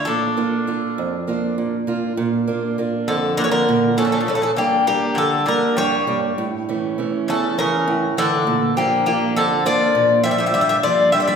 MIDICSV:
0, 0, Header, 1, 4, 480
1, 0, Start_track
1, 0, Tempo, 601805
1, 52, Time_signature, 7, 3, 24, 8
1, 4611, Tempo, 594059
1, 9117, End_track
2, 0, Start_track
2, 0, Title_t, "Bouzouki"
2, 0, Program_c, 0, 25
2, 40, Note_on_c, 0, 69, 81
2, 1218, Note_off_c, 0, 69, 0
2, 2455, Note_on_c, 0, 69, 77
2, 2688, Note_off_c, 0, 69, 0
2, 2691, Note_on_c, 0, 70, 85
2, 2740, Note_off_c, 0, 70, 0
2, 2743, Note_on_c, 0, 73, 68
2, 2800, Note_off_c, 0, 73, 0
2, 2803, Note_on_c, 0, 70, 84
2, 3169, Note_off_c, 0, 70, 0
2, 3173, Note_on_c, 0, 69, 91
2, 3218, Note_off_c, 0, 69, 0
2, 3228, Note_on_c, 0, 69, 58
2, 3278, Note_off_c, 0, 69, 0
2, 3287, Note_on_c, 0, 69, 64
2, 3344, Note_off_c, 0, 69, 0
2, 3354, Note_on_c, 0, 69, 54
2, 3405, Note_off_c, 0, 69, 0
2, 3415, Note_on_c, 0, 69, 71
2, 3461, Note_off_c, 0, 69, 0
2, 3471, Note_on_c, 0, 69, 67
2, 3525, Note_off_c, 0, 69, 0
2, 3535, Note_on_c, 0, 69, 71
2, 3593, Note_off_c, 0, 69, 0
2, 3655, Note_on_c, 0, 67, 76
2, 3877, Note_off_c, 0, 67, 0
2, 3887, Note_on_c, 0, 67, 85
2, 4112, Note_off_c, 0, 67, 0
2, 4130, Note_on_c, 0, 69, 83
2, 4371, Note_off_c, 0, 69, 0
2, 4375, Note_on_c, 0, 70, 88
2, 4595, Note_off_c, 0, 70, 0
2, 4609, Note_on_c, 0, 73, 98
2, 4946, Note_off_c, 0, 73, 0
2, 5837, Note_on_c, 0, 69, 78
2, 6051, Note_off_c, 0, 69, 0
2, 6070, Note_on_c, 0, 70, 83
2, 6511, Note_off_c, 0, 70, 0
2, 6552, Note_on_c, 0, 69, 92
2, 6992, Note_off_c, 0, 69, 0
2, 7026, Note_on_c, 0, 67, 75
2, 7245, Note_off_c, 0, 67, 0
2, 7262, Note_on_c, 0, 67, 74
2, 7482, Note_off_c, 0, 67, 0
2, 7507, Note_on_c, 0, 69, 92
2, 7725, Note_off_c, 0, 69, 0
2, 7749, Note_on_c, 0, 74, 96
2, 8207, Note_off_c, 0, 74, 0
2, 8210, Note_on_c, 0, 76, 102
2, 8261, Note_off_c, 0, 76, 0
2, 8271, Note_on_c, 0, 76, 74
2, 8321, Note_off_c, 0, 76, 0
2, 8331, Note_on_c, 0, 76, 75
2, 8384, Note_off_c, 0, 76, 0
2, 8393, Note_on_c, 0, 76, 61
2, 8445, Note_off_c, 0, 76, 0
2, 8455, Note_on_c, 0, 76, 80
2, 8504, Note_off_c, 0, 76, 0
2, 8514, Note_on_c, 0, 76, 77
2, 8570, Note_off_c, 0, 76, 0
2, 8579, Note_on_c, 0, 76, 89
2, 8640, Note_off_c, 0, 76, 0
2, 8694, Note_on_c, 0, 74, 86
2, 8915, Note_off_c, 0, 74, 0
2, 8927, Note_on_c, 0, 76, 87
2, 8979, Note_off_c, 0, 76, 0
2, 8989, Note_on_c, 0, 76, 64
2, 9041, Note_off_c, 0, 76, 0
2, 9050, Note_on_c, 0, 76, 81
2, 9107, Note_off_c, 0, 76, 0
2, 9117, End_track
3, 0, Start_track
3, 0, Title_t, "Steel-string acoustic guitar"
3, 0, Program_c, 1, 25
3, 58, Note_on_c, 1, 46, 61
3, 294, Note_on_c, 1, 58, 49
3, 298, Note_on_c, 1, 62, 46
3, 302, Note_on_c, 1, 65, 53
3, 523, Note_off_c, 1, 46, 0
3, 527, Note_off_c, 1, 62, 0
3, 529, Note_off_c, 1, 58, 0
3, 536, Note_off_c, 1, 65, 0
3, 537, Note_on_c, 1, 58, 46
3, 540, Note_on_c, 1, 62, 39
3, 545, Note_on_c, 1, 65, 49
3, 782, Note_on_c, 1, 41, 62
3, 921, Note_off_c, 1, 62, 0
3, 922, Note_off_c, 1, 58, 0
3, 926, Note_off_c, 1, 65, 0
3, 1016, Note_on_c, 1, 58, 50
3, 1021, Note_on_c, 1, 62, 47
3, 1027, Note_on_c, 1, 65, 49
3, 1245, Note_off_c, 1, 41, 0
3, 1260, Note_on_c, 1, 46, 61
3, 1401, Note_off_c, 1, 58, 0
3, 1404, Note_off_c, 1, 62, 0
3, 1405, Note_off_c, 1, 65, 0
3, 1493, Note_on_c, 1, 58, 49
3, 1499, Note_on_c, 1, 65, 55
3, 1500, Note_on_c, 1, 62, 39
3, 1688, Note_off_c, 1, 58, 0
3, 1689, Note_off_c, 1, 62, 0
3, 1690, Note_off_c, 1, 65, 0
3, 1724, Note_off_c, 1, 46, 0
3, 1734, Note_on_c, 1, 46, 68
3, 1974, Note_on_c, 1, 58, 50
3, 1976, Note_on_c, 1, 62, 41
3, 1986, Note_on_c, 1, 65, 46
3, 2201, Note_off_c, 1, 46, 0
3, 2208, Note_off_c, 1, 58, 0
3, 2216, Note_off_c, 1, 62, 0
3, 2217, Note_off_c, 1, 65, 0
3, 2218, Note_on_c, 1, 58, 47
3, 2223, Note_on_c, 1, 62, 47
3, 2230, Note_on_c, 1, 65, 41
3, 2454, Note_on_c, 1, 41, 62
3, 2601, Note_off_c, 1, 58, 0
3, 2606, Note_off_c, 1, 62, 0
3, 2607, Note_off_c, 1, 65, 0
3, 2694, Note_on_c, 1, 58, 55
3, 2696, Note_on_c, 1, 62, 49
3, 2704, Note_on_c, 1, 65, 50
3, 2921, Note_off_c, 1, 41, 0
3, 2940, Note_on_c, 1, 46, 70
3, 3078, Note_off_c, 1, 58, 0
3, 3081, Note_off_c, 1, 62, 0
3, 3082, Note_off_c, 1, 65, 0
3, 3166, Note_on_c, 1, 58, 48
3, 3169, Note_on_c, 1, 62, 45
3, 3174, Note_on_c, 1, 65, 46
3, 3361, Note_off_c, 1, 58, 0
3, 3365, Note_off_c, 1, 62, 0
3, 3365, Note_off_c, 1, 65, 0
3, 3403, Note_off_c, 1, 46, 0
3, 3405, Note_on_c, 1, 43, 61
3, 3642, Note_on_c, 1, 55, 48
3, 3646, Note_on_c, 1, 58, 44
3, 3653, Note_on_c, 1, 62, 60
3, 3874, Note_off_c, 1, 43, 0
3, 3875, Note_off_c, 1, 58, 0
3, 3876, Note_off_c, 1, 55, 0
3, 3880, Note_off_c, 1, 62, 0
3, 3884, Note_on_c, 1, 55, 48
3, 3887, Note_on_c, 1, 58, 37
3, 3889, Note_on_c, 1, 62, 54
3, 4132, Note_on_c, 1, 50, 55
3, 4270, Note_off_c, 1, 58, 0
3, 4271, Note_off_c, 1, 55, 0
3, 4273, Note_off_c, 1, 62, 0
3, 4365, Note_on_c, 1, 55, 52
3, 4368, Note_on_c, 1, 58, 50
3, 4372, Note_on_c, 1, 62, 57
3, 4595, Note_off_c, 1, 50, 0
3, 4607, Note_on_c, 1, 43, 69
3, 4751, Note_off_c, 1, 55, 0
3, 4753, Note_off_c, 1, 58, 0
3, 4753, Note_off_c, 1, 62, 0
3, 4845, Note_on_c, 1, 55, 57
3, 4852, Note_on_c, 1, 62, 55
3, 4853, Note_on_c, 1, 58, 39
3, 5042, Note_off_c, 1, 55, 0
3, 5043, Note_off_c, 1, 58, 0
3, 5045, Note_off_c, 1, 62, 0
3, 5077, Note_off_c, 1, 43, 0
3, 5095, Note_on_c, 1, 45, 69
3, 5343, Note_on_c, 1, 52, 47
3, 5347, Note_on_c, 1, 61, 57
3, 5348, Note_on_c, 1, 57, 39
3, 5561, Note_off_c, 1, 45, 0
3, 5572, Note_off_c, 1, 52, 0
3, 5575, Note_off_c, 1, 57, 0
3, 5575, Note_off_c, 1, 61, 0
3, 5579, Note_on_c, 1, 52, 52
3, 5586, Note_on_c, 1, 57, 45
3, 5592, Note_on_c, 1, 61, 56
3, 5827, Note_on_c, 1, 40, 68
3, 5964, Note_off_c, 1, 52, 0
3, 5966, Note_off_c, 1, 57, 0
3, 5966, Note_off_c, 1, 61, 0
3, 6063, Note_on_c, 1, 52, 52
3, 6068, Note_on_c, 1, 61, 61
3, 6288, Note_off_c, 1, 40, 0
3, 6303, Note_on_c, 1, 45, 69
3, 6445, Note_off_c, 1, 52, 0
3, 6448, Note_off_c, 1, 61, 0
3, 6544, Note_on_c, 1, 52, 55
3, 6546, Note_on_c, 1, 57, 49
3, 6555, Note_on_c, 1, 61, 47
3, 6733, Note_off_c, 1, 52, 0
3, 6735, Note_off_c, 1, 57, 0
3, 6737, Note_off_c, 1, 61, 0
3, 6766, Note_off_c, 1, 45, 0
3, 6783, Note_on_c, 1, 46, 67
3, 7022, Note_on_c, 1, 53, 53
3, 7027, Note_on_c, 1, 58, 46
3, 7031, Note_on_c, 1, 62, 51
3, 7245, Note_off_c, 1, 46, 0
3, 7251, Note_off_c, 1, 53, 0
3, 7254, Note_off_c, 1, 58, 0
3, 7258, Note_off_c, 1, 62, 0
3, 7259, Note_on_c, 1, 53, 47
3, 7267, Note_on_c, 1, 62, 55
3, 7268, Note_on_c, 1, 58, 41
3, 7506, Note_on_c, 1, 41, 58
3, 7642, Note_off_c, 1, 53, 0
3, 7644, Note_off_c, 1, 58, 0
3, 7646, Note_off_c, 1, 62, 0
3, 7738, Note_on_c, 1, 53, 53
3, 7742, Note_on_c, 1, 58, 50
3, 7749, Note_on_c, 1, 62, 59
3, 7965, Note_off_c, 1, 41, 0
3, 7979, Note_on_c, 1, 46, 64
3, 8120, Note_off_c, 1, 53, 0
3, 8122, Note_off_c, 1, 58, 0
3, 8126, Note_off_c, 1, 62, 0
3, 8217, Note_on_c, 1, 53, 47
3, 8219, Note_on_c, 1, 58, 41
3, 8223, Note_on_c, 1, 62, 50
3, 8407, Note_off_c, 1, 58, 0
3, 8408, Note_off_c, 1, 53, 0
3, 8411, Note_off_c, 1, 62, 0
3, 8441, Note_off_c, 1, 46, 0
3, 8464, Note_on_c, 1, 43, 63
3, 8697, Note_on_c, 1, 55, 46
3, 8704, Note_on_c, 1, 62, 59
3, 8705, Note_on_c, 1, 58, 37
3, 8922, Note_off_c, 1, 43, 0
3, 8922, Note_off_c, 1, 55, 0
3, 8926, Note_off_c, 1, 58, 0
3, 8928, Note_off_c, 1, 62, 0
3, 8932, Note_on_c, 1, 55, 49
3, 8935, Note_on_c, 1, 58, 43
3, 8941, Note_on_c, 1, 62, 50
3, 9117, Note_off_c, 1, 55, 0
3, 9117, Note_off_c, 1, 58, 0
3, 9117, Note_off_c, 1, 62, 0
3, 9117, End_track
4, 0, Start_track
4, 0, Title_t, "Bouzouki"
4, 0, Program_c, 2, 25
4, 58, Note_on_c, 2, 62, 65
4, 1227, Note_off_c, 2, 62, 0
4, 2455, Note_on_c, 2, 50, 68
4, 2679, Note_off_c, 2, 50, 0
4, 2693, Note_on_c, 2, 50, 76
4, 2747, Note_off_c, 2, 50, 0
4, 2752, Note_on_c, 2, 52, 59
4, 2805, Note_off_c, 2, 52, 0
4, 2810, Note_on_c, 2, 50, 71
4, 3150, Note_off_c, 2, 50, 0
4, 3175, Note_on_c, 2, 49, 72
4, 3232, Note_off_c, 2, 49, 0
4, 3246, Note_on_c, 2, 49, 52
4, 3283, Note_off_c, 2, 49, 0
4, 3292, Note_on_c, 2, 49, 63
4, 3345, Note_off_c, 2, 49, 0
4, 3354, Note_on_c, 2, 49, 53
4, 3412, Note_off_c, 2, 49, 0
4, 3426, Note_on_c, 2, 49, 71
4, 3473, Note_off_c, 2, 49, 0
4, 3483, Note_on_c, 2, 49, 56
4, 3515, Note_off_c, 2, 49, 0
4, 3525, Note_on_c, 2, 49, 64
4, 3587, Note_off_c, 2, 49, 0
4, 3641, Note_on_c, 2, 58, 70
4, 3869, Note_off_c, 2, 58, 0
4, 3885, Note_on_c, 2, 58, 70
4, 4106, Note_on_c, 2, 50, 74
4, 4111, Note_off_c, 2, 58, 0
4, 4340, Note_off_c, 2, 50, 0
4, 4353, Note_on_c, 2, 50, 80
4, 4583, Note_off_c, 2, 50, 0
4, 4599, Note_on_c, 2, 55, 85
4, 4941, Note_off_c, 2, 55, 0
4, 5823, Note_on_c, 2, 49, 72
4, 6043, Note_off_c, 2, 49, 0
4, 6079, Note_on_c, 2, 49, 79
4, 6516, Note_off_c, 2, 49, 0
4, 6553, Note_on_c, 2, 50, 76
4, 6993, Note_off_c, 2, 50, 0
4, 7035, Note_on_c, 2, 58, 73
4, 7250, Note_off_c, 2, 58, 0
4, 7265, Note_on_c, 2, 58, 75
4, 7484, Note_off_c, 2, 58, 0
4, 7515, Note_on_c, 2, 50, 82
4, 7729, Note_off_c, 2, 50, 0
4, 7745, Note_on_c, 2, 53, 74
4, 8186, Note_off_c, 2, 53, 0
4, 8224, Note_on_c, 2, 55, 83
4, 8276, Note_off_c, 2, 55, 0
4, 8290, Note_on_c, 2, 55, 59
4, 8333, Note_off_c, 2, 55, 0
4, 8343, Note_on_c, 2, 55, 75
4, 8388, Note_off_c, 2, 55, 0
4, 8398, Note_on_c, 2, 55, 67
4, 8451, Note_off_c, 2, 55, 0
4, 8460, Note_on_c, 2, 55, 73
4, 8514, Note_off_c, 2, 55, 0
4, 8523, Note_on_c, 2, 55, 63
4, 8576, Note_off_c, 2, 55, 0
4, 8588, Note_on_c, 2, 55, 70
4, 8639, Note_off_c, 2, 55, 0
4, 8695, Note_on_c, 2, 53, 73
4, 8915, Note_off_c, 2, 53, 0
4, 8939, Note_on_c, 2, 55, 74
4, 8991, Note_off_c, 2, 55, 0
4, 9005, Note_on_c, 2, 55, 60
4, 9049, Note_off_c, 2, 55, 0
4, 9059, Note_on_c, 2, 55, 73
4, 9111, Note_off_c, 2, 55, 0
4, 9117, End_track
0, 0, End_of_file